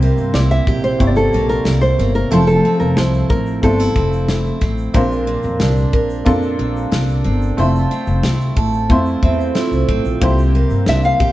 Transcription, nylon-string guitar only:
0.34 D5
0.51 E5
0.84 C5
1.16 A4
1.49 A#4
1.81 C5
2.15 A#4
2.31 A4
2.47 A4
2.80 A#4
2.97 C5
3.30 A#4
3.63 A4
10.89 E5
11.05 F5

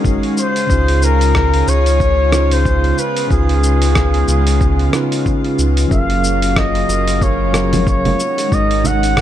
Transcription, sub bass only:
0.04 F#1
0.70 C#2
1.68 C#2
3.31 C#2
4.28 C#2
5.59 C#2
5.91 F#1
6.89 F#1
8.52 G#1

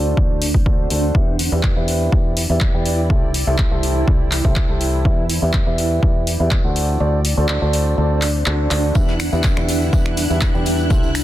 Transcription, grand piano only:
Already playing: D4 F#4 A4 C5 D5
0.17 D4 F#4 A4
0.66 D4 F#4 A4 C5 D5
0.90 D4 F#4 A4 C5 D5
1.15 E4 G4 E5
1.52 E4 G4 B4 D5 E5
1.76 E4 G4 B4 D5 E5
2.12 E4 B4
2.50 E4 G4 B4 D5 E5
2.74 E4 G4 B4 D5 G5
3.47 E4 G4 A4 C5 E5
3.71 E4 G4 A4 C5 E5
4.07 E4 G4 A4 C5 D5
4.45 E4 G4 A4 C5 E5
4.69 E4 G4 A4 C5 A5
5.05 E4 D5 E5
5.42 E4 G4 B4 D5 E5
5.67 E4 G4 B4 D5 E5
6.03 E4 G4 B4 D5
6.40 E4 G4 B4 D5 E5
6.64 D4 F#4 A4 C5 F#5
7.00 D4 F#4 A4 C5 D5
7.37 D4 F#4 A4 C5 D5
7.62 D4 F#4 A4 C5 D5
7.98 D4 F#4 A4 C5 D5
8.46 D4 F#4 A4 C5 D5
8.71 D4 F#4 A4 D5
8.95 E4 G4 B4 D5 E5
9.32 E4 G4 B4 D5 E5
9.57 E4 G4 B4 D5 E5
9.93 E4 G4 B4 D5 E5
10.30 E4 G4 B4 D5 E5
10.54 E4 G4 B4 D5 G5
10.90 E4 G4 A4 C5 E5

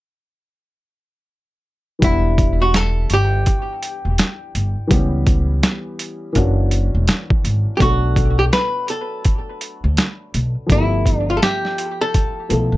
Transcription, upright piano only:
1.99 E3 G3 B3
2.03 D4 F#5
4.87 E3 G3 B3
4.92 C#4 G4
6.33 E3 A#3 C#4 D4
6.38 F#4
7.77 F#3 A3 B3 D4
7.83 A4
10.67 F3 A3 A#3
10.71 E4 G4
10.76 B3
12.49 F3 A3 B3 E4 A4

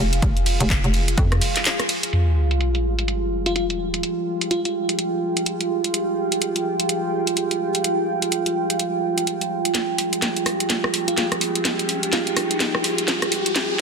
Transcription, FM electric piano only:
3.46 F4
3.56 F4
4.51 F4
4.65 F4
11.08 F4
11.17 F4
12.13 F4
12.27 F4

